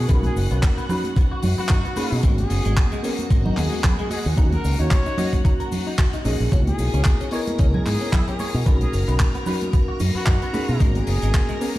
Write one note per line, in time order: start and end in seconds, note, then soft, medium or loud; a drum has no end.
0.00 6.53 F#4 medium
0.00 6.53 F#5 medium
0.08 0.28 B1 medium
0.08 0.17 B3 medium
0.08 0.86 C#4 medium
0.08 0.87 D#4 medium
0.08 0.87 F#4 loud
0.08 0.86 A#4 medium
0.08 kick loud
0.08 closed hi-hat medium
0.08 cabasa medium
0.23 0.36 G#4 medium
0.23 closed hi-hat medium
0.23 high conga loud
0.36 0.46 F#1 medium
0.36 open hi-hat loud
0.36 cabasa medium
0.51 0.59 B1 medium
0.51 0.57 B3 medium
0.51 closed hi-hat medium
0.51 cabasa soft
0.63 kick loud
0.63 clap loud
0.63 closed hi-hat medium
0.63 high conga medium
0.63 cabasa medium
0.78 0.84 B3 medium
0.78 closed hi-hat soft
0.78 cabasa soft
0.89 1.94 C#4 medium
0.89 1.95 D#4 medium
0.89 1.95 F#4 medium
0.89 0.97 B4 medium
0.89 open hi-hat loud
0.89 low conga medium
0.89 cabasa medium
1.04 closed hi-hat medium
1.04 high conga medium
1.04 cabasa soft
1.16 1.21 B3 medium
1.16 kick loud
1.16 closed hi-hat medium
1.16 cabasa soft
1.32 1.40 F#4 medium
1.43 1.58 F#2 medium
1.43 open hi-hat loud
1.43 high conga medium
1.43 low conga loud
1.43 cabasa loud
1.58 1.64 B3 medium
1.58 2.29 F#4 loud
1.58 muted fingered electric bass stroke soft
1.58 cabasa soft
1.69 1.80 F#2 medium
1.69 1.77 D#4 loud
1.69 kick loud
1.69 clap loud
1.69 closed hi-hat medium
1.69 cabasa soft
1.85 1.88 B3 loud
1.85 closed hi-hat medium
1.96 2.20 A#3 loud
1.96 2.21 C#4 medium
1.96 2.21 D#4 medium
1.96 2.21 G#4 loud
1.96 2.04 B4 medium
1.96 muted fingered electric bass stroke soft
1.96 open hi-hat loud
1.96 high conga loud
1.96 cabasa medium
2.12 2.20 B2 medium
2.12 cabasa soft
2.23 2.42 G#1 loud
2.23 2.31 G#3 loud
2.23 3.01 A#3 medium
2.23 3.01 B3 medium
2.23 3.01 C#4 medium
2.23 3.02 F#4 medium
2.23 kick loud
2.23 closed hi-hat medium
2.23 cabasa medium
2.38 3.13 G#4 loud
2.38 closed hi-hat medium
2.38 high conga medium
2.50 2.60 F#1 medium
2.50 open hi-hat loud
2.50 cabasa medium
2.65 2.73 G#1 medium
2.65 2.71 G#3 medium
2.65 closed hi-hat medium
2.65 cabasa soft
2.77 kick loud
2.77 clap loud
2.77 closed hi-hat medium
2.77 high conga medium
2.77 cabasa soft
2.92 2.98 G#3 medium
2.92 closed hi-hat medium
2.92 cabasa soft
3.03 4.09 A#3 medium
3.03 4.09 B3 medium
3.03 4.10 C#4 medium
3.03 3.11 G#4 medium
3.03 4.10 A#4 loud
3.03 open hi-hat loud
3.03 cabasa medium
3.19 closed hi-hat medium
3.19 high conga loud
3.19 cabasa soft
3.30 3.49 G#1 medium
3.30 3.35 G#3 medium
3.30 kick loud
3.30 closed hi-hat loud
3.30 cabasa medium
3.45 3.54 D#4 medium
3.45 low conga medium
3.57 3.67 D#2 medium
3.57 3.96 G#4 medium
3.57 clap soft
3.57 open hi-hat loud
3.57 high conga medium
3.57 cabasa medium
3.72 3.78 G#3 medium
3.72 cabasa soft
3.84 3.92 B3 loud
3.84 kick loud
3.84 clap loud
3.84 closed hi-hat medium
3.84 low conga medium
3.84 cabasa soft
3.99 4.03 G#3 loud
3.99 4.08 G#4 medium
3.99 closed hi-hat soft
4.11 4.26 G#4 medium
4.11 4.18 D#5 medium
4.11 open hi-hat loud
4.11 high conga loud
4.11 cabasa medium
4.26 4.34 D#2 loud
4.26 cabasa soft
4.37 4.56 D#2 medium
4.37 5.15 A#3 medium
4.37 5.15 C#4 medium
4.37 4.45 D#4 loud
4.37 5.15 D#4 medium
4.37 5.16 F#4 medium
4.37 kick loud
4.37 closed hi-hat loud
4.37 cabasa medium
4.52 4.76 A#4 medium
4.52 closed hi-hat medium
4.52 high conga loud
4.64 4.74 C#2 medium
4.64 open hi-hat loud
4.64 cabasa medium
4.79 4.87 D#2 medium
4.79 4.85 D#4 medium
4.79 5.54 C#5 medium
4.79 closed hi-hat medium
4.79 cabasa soft
4.91 kick loud
4.91 clap loud
4.91 closed hi-hat medium
4.91 high conga medium
4.91 cabasa soft
5.06 5.12 D#4 medium
5.06 closed hi-hat soft
5.06 cabasa soft
5.17 6.22 A#3 medium
5.17 6.23 C#4 medium
5.17 6.23 D#4 medium
5.17 6.23 F#4 medium
5.17 5.26 D#5 medium
5.17 open hi-hat loud
5.17 low conga medium
5.17 cabasa medium
5.33 kick medium
5.33 closed hi-hat medium
5.33 high conga medium
5.33 cabasa soft
5.45 5.49 D#4 medium
5.45 kick loud
5.45 closed hi-hat medium
5.45 cabasa soft
5.60 5.69 A#4 medium
5.60 closed hi-hat medium
5.71 open hi-hat loud
5.71 high conga medium
5.71 low conga medium
5.71 cabasa medium
5.87 5.93 D#4 medium
5.87 cabasa soft
5.98 6.06 F#4 loud
5.98 kick loud
5.98 clap loud
5.98 closed hi-hat medium
5.98 cabasa medium
6.13 6.17 D#4 loud
6.13 closed hi-hat medium
6.13 cabasa soft
6.25 6.35 A#1 medium
6.25 6.49 A#3 medium
6.25 6.49 C#4 medium
6.25 6.49 D#4 medium
6.25 6.49 G#4 loud
6.25 6.33 D#5 medium
6.25 open hi-hat loud
6.25 high conga loud
6.25 cabasa medium
6.40 6.48 A#1 medium
6.40 cabasa soft
6.51 6.71 C#2 loud
6.51 7.29 B3 medium
6.51 6.60 C#4 loud
6.51 7.29 D#4 medium
6.51 7.30 E4 medium
6.51 7.30 F#4 medium
6.51 11.79 A#4 medium
6.51 11.79 A#5 medium
6.51 kick loud
6.51 closed hi-hat medium
6.51 cabasa medium
6.67 7.41 G#4 loud
6.67 closed hi-hat medium
6.67 high conga loud
6.79 6.89 B1 medium
6.79 open hi-hat loud
6.79 cabasa medium
6.94 7.02 C#2 medium
6.94 7.00 C#4 medium
6.94 closed hi-hat medium
6.94 cabasa soft
7.04 kick loud
7.04 clap loud
7.04 closed hi-hat medium
7.04 high conga medium
7.04 cabasa medium
7.21 7.27 C#4 medium
7.21 closed hi-hat medium
7.21 cabasa soft
7.31 8.63 B3 loud
7.31 8.64 E4 medium
7.31 8.64 A#4 loud
7.31 7.40 C#5 medium
7.31 8.63 D#5 medium
7.31 open hi-hat loud
7.31 cabasa medium
7.47 closed hi-hat medium
7.47 high conga medium
7.47 cabasa soft
7.58 7.78 C#2 medium
7.58 7.64 C#4 medium
7.58 kick loud
7.58 closed hi-hat medium
7.58 cabasa soft
7.74 7.83 G#4 medium
7.74 low conga medium
7.86 7.96 G#2 medium
7.86 8.25 G#4 medium
7.86 clap soft
7.86 open hi-hat loud
7.86 high conga medium
7.86 cabasa medium
8.01 8.07 C#4 medium
8.01 cabasa soft
8.13 8.20 E4 loud
8.13 kick loud
8.13 clap loud
8.13 closed hi-hat medium
8.13 low conga loud
8.13 cabasa medium
8.28 8.31 C#4 loud
8.28 8.66 G#4 medium
8.28 closed hi-hat medium
8.39 8.47 C#5 medium
8.39 open hi-hat loud
8.39 high conga medium
8.39 cabasa medium
8.54 8.62 B2 loud
8.54 cabasa soft
8.66 8.85 B1 loud
8.66 8.74 B3 loud
8.66 9.44 C#4 medium
8.66 9.44 D#4 medium
8.66 9.44 F#4 loud
8.66 9.43 A#4 medium
8.66 kick loud
8.66 closed hi-hat medium
8.66 cabasa medium
8.81 8.93 G#4 medium
8.81 closed hi-hat medium
8.81 high conga medium
8.93 9.03 F#1 medium
8.93 open hi-hat loud
8.93 cabasa medium
9.08 9.16 B1 medium
9.08 9.14 B3 medium
9.08 closed hi-hat medium
9.08 cabasa soft
9.20 kick loud
9.20 clap loud
9.20 closed hi-hat medium
9.20 high conga medium
9.20 cabasa medium
9.34 9.41 B3 medium
9.34 closed hi-hat medium
9.34 cabasa soft
9.46 10.51 C#4 medium
9.46 10.52 D#4 medium
9.46 10.52 F#4 medium
9.46 9.54 B4 medium
9.46 open hi-hat loud
9.46 low conga medium
9.46 cabasa medium
9.61 closed hi-hat medium
9.61 high conga medium
9.61 cabasa soft
9.73 9.78 B3 medium
9.73 kick loud
9.73 closed hi-hat medium
9.73 cabasa soft
9.88 9.97 F#4 medium
10.00 10.14 F#2 medium
10.00 open hi-hat loud
10.00 high conga medium
10.00 low conga medium
10.00 cabasa medium
10.15 10.21 B3 medium
10.15 10.86 F#4 loud
10.15 muted fingered electric bass stroke soft
10.15 cabasa soft
10.26 10.37 F#2 medium
10.26 10.34 D#4 loud
10.26 kick loud
10.26 clap loud
10.26 closed hi-hat medium
10.26 cabasa soft
10.42 10.46 B3 loud
10.42 closed hi-hat medium
10.53 10.77 A#3 medium
10.53 10.78 C#4 medium
10.53 10.78 D#4 medium
10.53 10.78 G#4 loud
10.53 10.61 B4 medium
10.53 muted fingered electric bass stroke soft
10.53 open hi-hat loud
10.53 high conga medium
10.53 cabasa medium
10.68 10.77 B2 medium
10.68 cabasa soft
10.79 10.99 G#1 loud
10.79 10.88 G#3 loud
10.79 11.57 A#3 medium
10.79 11.58 B3 medium
10.79 11.58 C#4 medium
10.79 11.58 F#4 medium
10.79 kick loud
10.79 closed hi-hat loud
10.79 cabasa medium
10.95 11.70 G#4 loud
10.95 closed hi-hat medium
10.95 high conga medium
11.07 11.17 F#1 medium
11.07 open hi-hat loud
11.07 cabasa medium
11.22 11.30 G#1 loud
11.22 11.28 G#3 medium
11.22 closed hi-hat medium
11.22 cabasa soft
11.34 kick loud
11.34 clap loud
11.34 closed hi-hat medium
11.34 high conga medium
11.34 cabasa medium
11.49 11.55 G#3 medium
11.49 closed hi-hat medium
11.49 cabasa soft
11.60 11.79 A#3 loud
11.60 11.79 B3 medium
11.60 11.79 C#4 medium
11.60 11.68 G#4 medium
11.60 11.79 A#4 loud
11.60 open hi-hat loud
11.60 cabasa loud
11.75 closed hi-hat medium